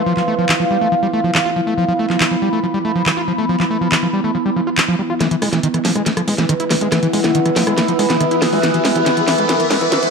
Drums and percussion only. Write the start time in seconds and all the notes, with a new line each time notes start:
0.17 clap
0.49 clap
1.35 clap
2.10 clap
2.21 clap
3.06 clap
3.60 clap
3.92 clap
4.78 clap
5.21 cross-stick, snare, closed hi-hat
5.31 closed hi-hat
5.42 cross-stick, open hi-hat
5.53 snare, closed hi-hat
5.63 closed hi-hat
5.74 cross-stick, closed hi-hat
5.85 snare, open hi-hat
5.96 cross-stick, closed hi-hat
6.06 snare, closed hi-hat
6.17 cross-stick, closed hi-hat
6.28 open hi-hat
6.38 snare, closed hi-hat
6.49 cross-stick, closed hi-hat
6.60 closed hi-hat
6.71 cross-stick, snare, open hi-hat
6.81 closed hi-hat
6.92 cross-stick, snare, closed hi-hat
7.03 closed hi-hat
7.13 open hi-hat
7.24 cross-stick, snare, closed hi-hat
7.35 closed hi-hat
7.46 cross-stick, closed hi-hat
7.56 snare, open hi-hat
7.67 cross-stick, closed hi-hat
7.78 snare, closed hi-hat
7.88 closed hi-hat
7.99 cross-stick, open hi-hat
8.10 snare, closed hi-hat
8.21 cross-stick, closed hi-hat
8.31 closed hi-hat
8.42 cross-stick, snare, open hi-hat
8.53 open hi-hat
8.63 snare, closed hi-hat
8.74 closed hi-hat
8.85 snare, open hi-hat
8.96 closed hi-hat
9.06 snare, closed hi-hat
9.17 closed hi-hat
9.28 snare, open hi-hat
9.38 closed hi-hat
9.49 snare, closed hi-hat
9.60 closed hi-hat
9.71 snare, open hi-hat
9.81 closed hi-hat
9.92 snare, closed hi-hat
10.03 closed hi-hat